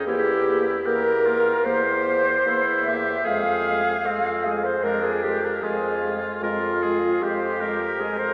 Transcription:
0.06 bassoon E2, french horn A#3, oboe E4, flute G4, clarinet G4
0.48 french horn A#3
0.85 bassoon E2, french horn A#3, oboe G4, flute A#4, clarinet A#4
1.26 french horn A#3, oboe F4
1.63 bassoon E2, french horn A#3, oboe G4, flute C5, clarinet C5
2.06 french horn A#3
2.46 bassoon E2, french horn A#3, oboe E4
2.83 flute E5
2.87 french horn A#3, oboe G4, clarinet E5
3.24 bassoon F2, french horn G#3, oboe G#4, flute F5, clarinet F5
3.66 french horn G#3
4.04 bassoon F2, french horn G#3, oboe C4
4.45 french horn G#3, clarinet G#4, flute G#4
4.63 flute C5, clarinet C5
4.82 bassoon F2, french horn G#3, oboe D4, flute A#4, clarinet A#4
5.03 clarinet G#4, flute G#4
5.22 french horn G#3, flute G4, clarinet G4
5.44 clarinet A#4, flute A#4
5.61 bassoon F2, french horn G#3, oboe F4, flute G#4, clarinet G#4
6.03 french horn G#3
6.41 bassoon F2, french horn G#3, clarinet F4, flute F4, oboe A#4
6.82 french horn G#3, oboe G#4
7.21 bassoon F2, french horn G#3, clarinet G4, flute G4, oboe C5
7.61 french horn G#3, oboe A#4
7.99 bassoon F2, french horn G#3, clarinet G#4, flute G#4
8.17 flute C5, clarinet C5

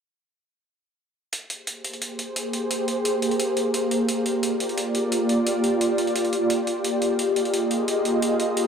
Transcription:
1.33 ambient pad A#3 G4 G#4 C5, closed hi-hat
1.50 closed hi-hat
1.67 closed hi-hat
1.85 closed hi-hat
1.94 closed hi-hat
2.02 closed hi-hat
2.19 closed hi-hat
2.36 closed hi-hat
2.53 closed hi-hat
2.71 closed hi-hat
2.88 closed hi-hat
3.05 closed hi-hat
3.22 closed hi-hat
3.31 closed hi-hat
3.40 closed hi-hat
3.57 closed hi-hat
3.74 closed hi-hat
3.91 ambient pad F4 G4 D5, closed hi-hat
4.09 closed hi-hat
4.26 closed hi-hat
4.43 closed hi-hat
4.60 closed hi-hat
4.69 closed hi-hat
4.78 closed hi-hat
4.95 closed hi-hat
5.12 closed hi-hat
5.29 closed hi-hat
5.47 closed hi-hat
5.64 closed hi-hat
5.81 closed hi-hat
5.98 closed hi-hat
6.07 closed hi-hat
6.16 closed hi-hat
6.25 closed hi-hat
6.33 closed hi-hat
6.50 closed hi-hat
6.67 ambient pad A#3 F4 G#4 D#5, closed hi-hat
6.84 closed hi-hat
7.02 closed hi-hat
7.19 closed hi-hat
7.36 closed hi-hat
7.45 closed hi-hat
7.54 closed hi-hat
7.71 closed hi-hat
7.88 closed hi-hat
8.05 closed hi-hat
8.22 closed hi-hat
8.40 closed hi-hat
8.57 closed hi-hat

